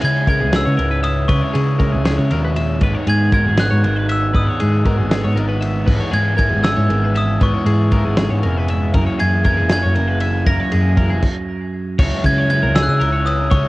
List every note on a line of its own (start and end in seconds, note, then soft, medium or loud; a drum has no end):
0.00 0.27 C#3 medium
0.00 0.81 C#3 medium
0.00 0.42 C#3 medium
0.00 0.30 G#3 medium
0.00 0.56 B3 medium
0.00 0.29 C#4 medium
0.00 0.30 E4 medium
0.00 0.27 G#4 medium
0.00 1.34 B4 medium
0.00 ride medium
0.04 0.28 G#3 medium
0.04 0.29 G#6 loud
0.27 0.54 C#3 medium
0.27 0.54 G#3 medium
0.27 1.81 G#3 medium
0.27 0.53 C#4 medium
0.27 0.52 E4 medium
0.27 0.40 A#4 medium
0.27 0.55 G#6 medium
0.27 kick medium
0.27 ride medium
0.40 0.64 C#2 medium
0.40 0.52 G#4 medium
0.53 0.77 C#3 medium
0.53 0.79 G#3 medium
0.53 3.58 B3 medium
0.53 0.78 C#4 medium
0.53 0.80 E4 medium
0.53 0.66 G#4 medium
0.53 1.07 E6 medium
0.53 snare loud
0.53 ride loud
0.66 0.78 C#3 medium
0.66 0.77 C#5 medium
0.77 1.27 C#2 medium
0.77 1.28 C#3 medium
0.77 1.29 G#3 medium
0.77 1.30 C#4 medium
0.77 1.30 E4 medium
0.77 0.90 A#4 medium
0.77 ride medium
0.82 1.28 G#2 medium
0.91 1.03 B4 medium
1.03 1.28 E5 medium
1.03 1.15 D#6 medium
1.03 ride medium
1.28 1.41 C#2 medium
1.28 1.78 C#3 medium
1.28 2.06 C#3 medium
1.28 1.55 G#3 medium
1.28 1.54 C#4 medium
1.28 1.52 E4 loud
1.28 1.42 B4 medium
1.28 2.01 C#6 medium
1.28 kick loud
1.28 ride loud
1.42 1.55 C#5 medium
1.53 1.95 C#3 medium
1.53 1.80 G#3 medium
1.53 1.80 C#4 medium
1.53 1.80 E4 medium
1.53 1.79 G#4 medium
1.53 ride medium
1.79 2.05 C#3 medium
1.79 2.05 G#3 medium
1.79 3.32 G#3 medium
1.79 2.04 C#4 medium
1.79 2.03 E4 medium
1.79 1.93 A#4 medium
1.79 kick medium
1.79 ride medium
1.93 2.17 C#2 medium
1.93 2.05 G#4 medium
2.04 2.28 C#3 medium
2.04 2.31 C#3 medium
2.04 2.30 G#3 medium
2.04 2.30 C#4 medium
2.04 2.31 E4 loud
2.04 2.19 G#4 medium
2.04 snare loud
2.04 ride loud
2.18 2.31 C#3 medium
2.18 2.31 C#5 medium
2.29 2.79 D#2 medium
2.29 2.57 B2 medium
2.29 2.80 C#3 medium
2.29 2.82 G#3 medium
2.29 2.81 C#4 medium
2.29 2.81 E4 medium
2.29 2.44 A#4 medium
2.29 ride medium
2.45 2.57 B4 medium
2.55 2.81 A#2 medium
2.55 2.82 E5 medium
2.55 ride medium
2.81 2.94 G#1 medium
2.81 3.60 G#2 medium
2.81 4.33 G#2 medium
2.81 3.32 D#3 loud
2.81 3.09 G#3 medium
2.81 3.09 B3 loud
2.81 3.07 D#4 loud
2.81 2.95 B4 loud
2.81 kick loud
2.81 ride loud
2.95 3.08 C#5 medium
3.07 3.47 G#2 medium
3.07 3.34 G#3 medium
3.07 3.35 B3 medium
3.07 3.35 D#4 medium
3.07 3.33 G#4 medium
3.07 3.32 G#6 loud
3.07 ride medium
3.32 3.59 D#3 medium
3.32 4.83 G#3 medium
3.32 3.59 G#3 medium
3.32 3.59 B3 medium
3.32 3.57 D#4 medium
3.32 3.84 F#4 medium
3.32 3.46 A#4 medium
3.32 3.57 G#6 medium
3.32 kick medium
3.32 ride medium
3.46 3.70 G#1 medium
3.46 3.56 G#4 medium
3.57 4.34 G#2 medium
3.57 3.82 D#3 medium
3.57 3.84 G#3 medium
3.57 5.09 B3 medium
3.57 3.85 B3 medium
3.57 3.85 D#4 loud
3.57 3.70 G#4 medium
3.57 4.12 F#6 medium
3.57 snare loud
3.57 ride medium
3.71 3.84 G#2 medium
3.71 3.84 C#5 medium
3.83 4.33 G#1 medium
3.83 4.33 D#3 medium
3.83 4.32 D#3 medium
3.83 4.35 G#3 medium
3.83 4.36 B3 medium
3.83 4.35 D#4 medium
3.83 4.33 F#4 medium
3.83 3.96 A#4 medium
3.83 ride medium
3.96 4.09 B4 medium
4.09 4.33 E5 medium
4.09 4.34 E6 medium
4.09 ride medium
4.33 4.47 G#1 medium
4.33 5.86 G#2 medium
4.33 5.13 G#2 medium
4.33 4.84 D#3 medium
4.33 4.62 G#3 medium
4.33 4.61 B3 medium
4.33 4.59 D#4 medium
4.33 4.47 B4 medium
4.33 5.08 D#6 medium
4.33 kick loud
4.33 ride medium
4.47 4.60 C#5 medium
4.60 5.01 G#2 medium
4.60 4.87 G#3 medium
4.60 4.87 B3 medium
4.60 4.87 D#4 medium
4.60 4.85 G#4 medium
4.60 ride medium
4.83 5.12 D#3 medium
4.83 6.38 G#3 medium
4.83 5.12 G#3 medium
4.83 5.12 B3 medium
4.83 5.35 F#4 soft
4.83 4.98 A#4 medium
4.83 kick medium
4.83 ride medium
4.88 5.11 D#4 medium
4.98 5.23 G#1 medium
4.98 5.11 G#4 medium
5.09 5.37 G#3 medium
5.09 6.63 B3 medium
5.09 5.39 B3 medium
5.09 5.38 D#4 medium
5.09 5.25 G#4 medium
5.09 snare loud
5.09 ride medium
5.13 5.87 G#2 medium
5.13 5.36 D#3 medium
5.24 5.34 G#2 medium
5.24 5.37 C#5 medium
5.35 5.84 G#1 medium
5.35 5.84 D#3 medium
5.35 5.87 D#3 medium
5.35 5.88 G#3 medium
5.35 5.89 B3 medium
5.35 5.48 D#4 soft
5.35 5.48 A#4 medium
5.35 ride medium
5.39 5.88 D#4 medium
5.48 5.87 F#4 soft
5.48 5.62 B4 medium
5.61 5.87 E5 medium
5.61 ride medium
5.87 6.00 G#1 medium
5.87 6.87 G#2 medium
5.87 6.65 G#2 loud
5.87 6.37 E3 medium
5.87 6.15 G#3 medium
5.87 6.14 B3 medium
5.87 6.13 E4 medium
5.87 6.00 B4 medium
5.87 kick loud
5.87 crash loud
6.00 6.13 C#5 medium
6.11 6.52 G#2 medium
6.11 6.39 B3 medium
6.11 6.40 E4 medium
6.11 6.36 G#4 medium
6.11 6.37 G#6 medium
6.11 ride medium
6.16 6.38 G#3 medium
6.37 6.64 E3 medium
6.37 7.94 G#3 medium
6.37 6.64 G#3 medium
6.37 6.63 B3 medium
6.37 6.62 E4 medium
6.37 6.89 G#4 medium
6.37 6.49 A#4 medium
6.37 6.65 G#6 medium
6.37 kick medium
6.37 ride medium
6.49 6.75 G#1 medium
6.49 6.62 G#4 medium
6.63 7.16 G#2 medium
6.63 6.88 E3 medium
6.63 6.89 G#3 medium
6.63 6.89 B3 medium
6.63 8.18 C#4 medium
6.63 6.91 E4 loud
6.63 6.76 G#4 medium
6.63 7.17 E6 loud
6.63 snare loud
6.63 ride medium
6.76 6.88 G#2 medium
6.76 6.90 C#5 medium
6.88 7.38 G#1 medium
6.88 7.37 G#2 medium
6.88 7.40 E3 medium
6.88 7.41 G#3 medium
6.88 7.40 B3 medium
6.88 7.42 E4 medium
6.88 7.94 G#4 medium
6.88 7.04 A#4 medium
6.88 ride medium
7.04 7.16 B4 medium
7.15 7.41 E5 medium
7.15 7.43 D#6 medium
7.15 ride medium
7.40 7.53 G#1 medium
7.40 8.43 G#2 medium
7.40 7.92 G#2 medium
7.40 7.91 E3 medium
7.40 7.67 G#3 medium
7.40 7.66 B3 medium
7.40 7.65 E4 loud
7.40 7.54 B4 medium
7.40 8.15 C#6 medium
7.40 kick loud
7.40 ride medium
7.54 7.66 C#5 medium
7.65 8.06 G#2 medium
7.65 7.92 G#3 medium
7.65 7.92 B3 medium
7.65 7.93 E4 medium
7.65 7.92 G#4 medium
7.65 ride medium
7.91 8.19 E3 medium
7.91 8.18 G#3 medium
7.91 8.97 G#3 medium
7.91 8.17 B3 medium
7.91 8.17 E4 medium
7.91 8.45 G#4 medium
7.91 8.05 A#4 medium
7.91 kick medium
7.91 ride medium
8.04 8.29 G#1 medium
8.04 8.16 G#4 medium
8.17 8.70 G#2 medium
8.17 8.42 E3 medium
8.17 8.43 G#3 medium
8.17 8.43 B3 medium
8.17 8.97 C#4 medium
8.17 8.45 E4 loud
8.17 8.30 G#4 medium
8.17 snare loud
8.17 ride medium
8.30 8.43 G#2 medium
8.30 8.43 C#5 medium
8.43 8.92 F1 medium
8.43 8.92 G#2 medium
8.43 8.94 E3 medium
8.43 8.95 G#3 medium
8.43 8.93 B3 medium
8.43 8.96 E4 medium
8.43 8.98 G#4 medium
8.43 8.57 A#4 medium
8.43 ride medium
8.57 8.69 B4 medium
8.68 8.94 E5 medium
8.68 ride medium
8.94 9.06 F#1 medium
8.94 9.50 F#2 medium
8.94 10.47 F#2 medium
8.94 9.45 C#3 medium
8.94 9.22 E3 medium
8.94 9.46 F#3 medium
8.94 9.21 A#3 loud
8.94 9.20 E4 loud
8.94 9.06 A#4 medium
8.94 kick loud
8.94 ride loud
8.98 9.72 E4 medium
8.98 9.47 G#4 medium
8.98 10.46 A#4 medium
9.06 9.19 C#5 medium
9.19 9.62 F#2 medium
9.19 9.47 E3 medium
9.19 9.47 A#3 medium
9.19 9.48 E4 medium
9.19 9.45 G#4 medium
9.19 9.45 G#6 medium
9.19 ride medium
9.45 9.71 C#3 medium
9.45 9.71 E3 medium
9.45 10.98 F#3 medium
9.45 9.70 A#3 medium
9.45 9.97 G#4 medium
9.45 9.58 A#4 medium
9.45 9.71 G#6 medium
9.45 kick medium
9.45 ride medium
9.49 9.69 E4 medium
9.57 9.83 F#1 medium
9.57 9.68 G#4 medium
9.69 10.23 F#2 medium
9.69 9.95 C#3 medium
9.69 9.96 E3 medium
9.69 9.97 A#3 medium
9.69 9.97 E4 medium
9.69 10.45 E4 medium
9.69 9.83 G#4 medium
9.69 10.44 G#6 loud
9.69 snare loud
9.69 ride medium
9.83 9.96 F#2 medium
9.83 9.95 C#5 medium
9.95 10.45 F#1 medium
9.95 10.46 C#3 medium
9.95 10.45 C#3 medium
9.95 10.47 E3 medium
9.95 10.48 A#3 medium
9.95 10.48 E4 medium
9.95 10.08 A#4 medium
9.95 ride medium
9.99 10.45 G#4 medium
10.08 10.21 B4 medium
10.20 10.46 E5 medium
10.20 ride medium
10.46 10.59 F#1 medium
10.46 10.98 F#2 loud
10.46 12.76 F#2 medium
10.46 10.96 C#3 medium
10.46 10.73 E3 loud
10.46 10.72 A#3 loud
10.46 10.71 E4 medium
10.46 10.60 A#4 loud
10.46 11.70 A#6 loud
10.46 kick loud
10.46 ride loud
10.60 10.72 C#5 medium
10.72 11.13 F#2 medium
10.72 10.97 E3 medium
10.72 10.98 A#3 medium
10.72 10.98 E4 medium
10.72 10.97 G#4 medium
10.72 ride medium
10.97 11.21 C#3 medium
10.97 11.22 E3 medium
10.97 12.76 F#3 medium
10.97 11.22 A#3 medium
10.97 11.22 E4 medium
10.97 11.21 G#4 medium
10.97 11.10 A#4 medium
10.97 kick medium
10.97 ride medium
11.10 11.23 F#1 medium
11.10 11.23 G#4 medium
11.22 kick medium
11.22 crash medium
11.99 12.11 C#2 loud
11.99 12.50 C#3 medium
11.99 12.26 G#3 medium
11.99 12.25 C#4 loud
11.99 12.24 E4 loud
11.99 12.25 C#5 medium
11.99 kick loud
11.99 crash loud
12.24 12.65 C#3 medium
12.24 12.50 G#3 medium
12.24 12.51 C#4 medium
12.24 12.52 E4 medium
12.24 12.38 B4 medium
12.24 12.49 G#6 loud
12.24 kick medium
12.24 ride medium
12.38 12.50 C#5 medium
12.50 12.76 C#3 medium
12.50 12.77 G#3 medium
12.50 12.75 C#4 medium
12.50 12.74 E4 medium
12.50 12.62 B4 medium
12.50 12.76 G#6 loud
12.50 ride medium
12.63 12.87 C#2 medium
12.63 12.75 A#4 medium
12.75 13.00 C#3 medium
12.75 13.01 G#3 medium
12.75 13.01 C#4 medium
12.75 13.02 E4 medium
12.75 13.01 G#4 medium
12.75 12.82 E6 loud
12.75 snare loud
12.75 ride medium
12.83 12.90 F#6 medium
12.88 13.00 C#3 medium
12.88 13.23 E6 medium
13.00 13.48 C#2 medium
13.00 13.51 C#3 medium
13.00 13.52 G#3 medium
13.00 13.52 C#4 loud
13.00 13.53 E4 medium
13.00 13.12 A#4 medium
13.00 ride medium
13.13 13.26 C#5 medium
13.26 13.38 B4 medium
13.26 13.52 D#6 medium
13.26 ride medium
13.38 13.50 A#4 medium
13.51 13.64 C#2 loud
13.51 13.68 C#3 loud
13.51 13.68 G#3 loud
13.51 13.68 C#4 loud
13.51 13.68 E4 loud
13.51 13.68 C#5 loud
13.51 13.68 C#6 medium
13.51 kick loud
13.51 ride loud